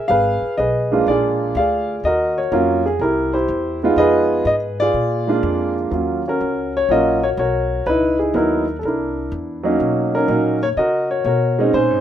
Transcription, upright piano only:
0.08 G#4 B4 F5
0.57 G#4 B4 D#5
0.92 G#3 A#3 D4 F4
1.08 F4 G#4 D5
1.57 G#4 D5 F5
2.05 F#4 A#4 D#5
2.38 C#5
2.52 F#3 A#3 C#4 F4 A#4
2.86 G#4
3.01 E4 G4 A#4
3.34 E4 G4 C5
3.83 G#3 B3 D#4 F4
3.98 G#4 B4 D#5
4.47 D#5
4.80 F4 G#4 D5
5.27 G#3 A#3 D4 F4
5.91 F#3 A#3 C#4 F4
6.28 C#4 F#4 A#4
6.77 C#5
6.90 F#3 A#3 C#4 F4 F#4 A#4 D#5
7.23 C#5
7.39 F#4 A#4 C#5
7.87 D#4 E4 B4
8.19 G#4
8.35 F#3 B3 D#4 E4 A#4
8.79 A4
8.85 D4 E4 A#4
9.63 F#3 A#3 C#4 D#4
10.15 C#4 D#4 A#4
10.28 F#3 A#3 C#4 D#4
10.63 C#5
10.77 F#4 A#4 D#5
11.11 C#5
11.26 F#4 A#4 C#5
11.59 G#3 C4 C#4 D#4
11.74 D#4 G#4 C5

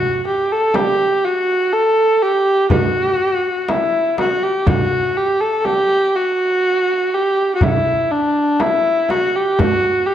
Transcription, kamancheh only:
Already playing: F#4
0.27 G4
0.52 A4
0.75 G4
1.24 F#4
1.73 A4
2.22 G4
2.71 F#4
3.70 E4
4.19 F#4
4.44 G4
4.68 F#4
5.17 G4
5.41 A4
5.64 G4
6.16 F#4
7.14 G4
7.55 F#4
7.63 E4
8.12 D4
8.61 E4
9.10 F#4
9.36 G4
9.59 F#4
10.06 G4

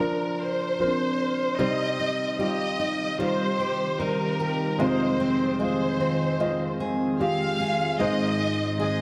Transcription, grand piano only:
Already playing: A#2
0.00 F3 D4 A#4
0.79 F3 C4 A#4
0.87 D4
1.59 C3 G3 D#4 C5
2.39 G3 D#4 F4
3.19 G3 D#4 F4
3.99 G3 D#4 C5
4.79 F2 C3 G#3 F4 D#5
5.59 G#3 F4 D#5
6.39 G#3 F4 D#5
7.19 G#3 F4 G4
7.99 G#2 D#3 G#3 D#4 C5
8.79 G#3 D#4 G#4

